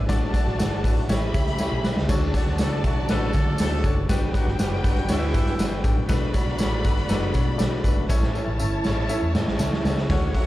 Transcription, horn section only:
2.35 2.55 F#3 medium
2.35 2.55 F#4 medium
2.60 2.80 A3 medium
2.60 2.80 A4 medium
2.85 3.05 F#3 medium
2.85 3.05 F#4 medium
3.09 3.56 A3 medium
3.09 3.56 A4 loud
3.61 3.95 A3 loud
3.61 3.95 A4 loud
4.36 4.56 F#3 medium
4.36 4.55 F#4 medium
4.61 4.80 G3 medium
4.61 4.80 G4 medium
4.86 5.06 F#3 medium
4.86 5.06 F#4 medium
5.12 5.82 E3 loud
5.12 5.82 E4 loud
10.35 10.46 F#3 medium
10.35 10.46 F#4 medium

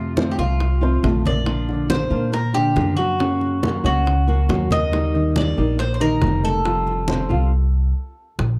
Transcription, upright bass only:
0.00 0.33 F2 medium
0.38 0.99 C2 medium
1.03 2.05 A#1 medium
2.11 2.72 A#2 medium
2.76 3.78 F#2 medium
3.84 4.45 C#2 medium
4.50 5.51 D#2 medium
5.58 6.19 A#1 medium
6.23 7.24 F1 medium
7.30 7.91 C2 medium
8.39 8.59 A#1 medium

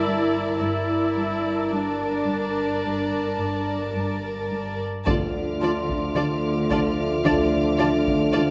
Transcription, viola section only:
0.00 0.59 E4 soft
0.60 1.70 E4 soft
1.72 3.95 D4 soft
5.08 5.16 F4 soft
5.61 5.69 F4 soft
6.15 6.23 F4 soft
6.71 6.79 F4 soft
7.24 7.32 F4 soft
7.79 7.87 F4 soft
8.33 8.41 F4 soft

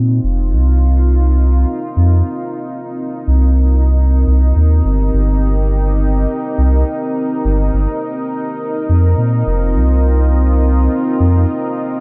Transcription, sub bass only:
0.00 0.20 A#2 medium
0.24 0.54 F1 medium
0.53 1.65 C2 loud
1.97 2.22 F2 loud
3.27 4.25 C2 loud
4.27 4.53 C2 loud
4.56 4.82 D#2 medium
4.85 5.11 G1 medium
5.13 6.27 G1 loud
6.58 6.84 C2 loud
7.45 7.70 G1 loud
7.74 7.87 G1 medium
8.89 9.15 F2 loud
9.18 9.44 A#2 medium
9.47 9.77 F1 medium
9.76 10.88 C2 loud
11.20 11.46 F2 loud

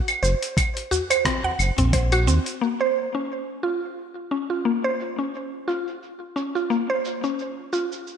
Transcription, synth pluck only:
0.00 0.21 F#4 medium
0.23 0.41 C5 medium
0.91 1.09 F#4 medium
1.10 1.24 C5 medium
1.25 1.36 C4 medium
1.44 1.58 F#5 loud
1.78 1.92 C4 medium
1.93 2.04 C5 medium
2.12 2.26 F#4 loud
2.27 2.45 C4 medium
2.61 2.72 A#3 medium
2.81 2.95 C5 medium
3.15 3.62 C#4 medium
3.63 3.81 F4 medium
4.31 4.50 C#4 medium
4.50 4.65 F4 medium
4.65 4.76 A#3 medium
4.84 4.99 C5 medium
5.18 5.66 C#4 medium
5.68 5.86 F4 medium
6.36 6.54 C#4 medium
6.55 6.69 F4 medium
6.70 6.81 A#3 medium
6.90 7.04 C5 medium
7.24 7.71 C#4 medium
7.73 7.91 F4 medium

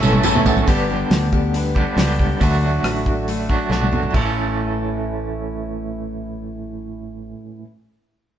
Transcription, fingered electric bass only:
0.00 0.35 A1 loud
0.45 0.63 A1 medium
0.67 1.03 G1 medium
1.10 1.83 D2 medium
1.97 2.33 C#2 medium
2.41 2.77 D2 medium
2.83 3.57 A1 medium
3.69 4.07 B1 medium
4.14 7.33 A1 medium

